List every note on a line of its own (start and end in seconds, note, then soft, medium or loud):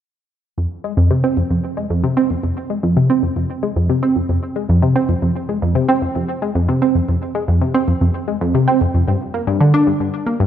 0.58 0.67 F2 medium
0.84 0.93 G#3 medium
0.97 1.10 F2 loud
1.11 1.23 C3 medium
1.24 1.36 C4 medium
1.37 1.43 F2 medium
1.51 1.59 F2 medium
1.77 1.86 G#3 medium
1.90 2.03 F2 medium
2.04 2.16 C3 medium
2.17 2.30 C4 medium
2.30 2.36 F2 medium
2.43 2.52 F2 medium
2.70 2.79 G#3 medium
2.83 2.96 F2 medium
2.97 3.09 C3 medium
3.10 3.22 C4 loud
3.23 3.28 F2 medium
3.36 3.45 F2 medium
3.63 3.72 G#3 medium
3.76 3.89 F2 loud
3.89 4.02 C3 medium
4.03 4.15 C4 loud
4.16 4.21 F2 medium
4.29 4.38 F2 medium
4.56 4.65 G#3 medium
4.69 4.82 F2 medium
4.82 4.95 C3 medium
4.96 5.08 C4 loud
5.09 5.14 F2 medium
5.22 5.31 F2 medium
5.49 5.58 G#3 medium
5.62 5.75 F2 medium
5.75 5.88 C3 loud
5.89 6.01 C4 loud
6.02 6.07 F2 medium
6.16 6.24 F2 medium
6.42 6.51 G#3 medium
6.55 6.68 F2 loud
6.69 6.81 C3 loud
6.82 6.94 C4 loud
6.95 7.00 F2 medium
7.09 7.17 F2 medium
7.35 7.44 G#3 medium
7.48 7.61 F2 medium
7.61 7.74 C3 loud
7.74 7.87 C4 medium
7.88 7.93 F2 medium
8.01 8.10 F2 medium
8.28 8.36 G#3 medium
8.41 8.54 F2 loud
8.55 8.67 C3 medium
8.68 8.80 C4 loud
8.81 8.86 F2 medium
8.94 9.03 F2 medium
9.08 9.16 G2 medium
9.34 9.43 A#3 medium
9.47 9.60 G2 medium
9.61 9.73 D3 medium
9.74 9.86 D4 medium
9.87 9.92 G2 medium
10.00 10.09 G2 medium
10.26 10.35 A#3 medium
10.40 10.47 G2 loud